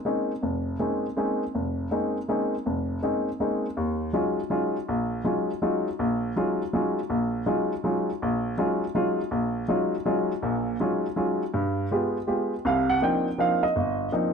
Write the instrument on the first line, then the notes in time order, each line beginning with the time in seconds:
grand piano
0.05 G#3 A#3 C4 C#4 D#4
0.43 F1
0.79 G#3 A#3 C4 C#4 D#4
1.17 G#3 A#3 C4 C#4 D#4
1.55 F1
1.91 G#3 A#3 C4 C#4 D#4
2.28 G#3 A#3 C4 C#4 D#4
2.66 F1
3.02 G#3 A#3 C4 C#4 D#4
3.40 G#3 A#3 C4 C#4 D#4
3.77 D#2
4.13 F#3 G#3 C#4 D#4 F4
4.50 F#3 G#3 C#4 D#4 F4
4.89 A#1
5.24 F#3 G#3 C#4 D#4 F4
5.62 F#3 G#3 C#4 D#4 F4
5.99 A#1
6.36 F#3 G#3 C#4 D#4 F4
6.73 F#3 G#3 C#4 D#4 F4
7.10 A#1
7.46 F#3 G#3 C#4 D#4 F4
7.84 F#3 G#3 C#4 D#4 F4
8.22 A#1
8.58 F#3 G#3 C#4 D#4 F4
8.95 F#3 G#3 C#4 D#4 F4
9.31 A#1
9.68 F#3 G#3 C#4 D#4 F4
10.06 F#3 G#3 C#4 D#4 F4
10.43 A#1 A#2
10.80 F#3 G#3 C#4 D#4 F4
11.16 F#3 G#3 C#4 D#4 F4
11.54 G2
11.91 G#3 B3 F4 G4
12.27 G#3 B3 F4 G4
12.65 C2 C3 F5
12.90 F#5
13.02 F3 A#3 C4 D4 D#4 G5
13.38 F3 A#3 C4 D4 D#4 F5
13.63 D#5
13.76 G1
14.12 F3 A#3 C4 D4 D#4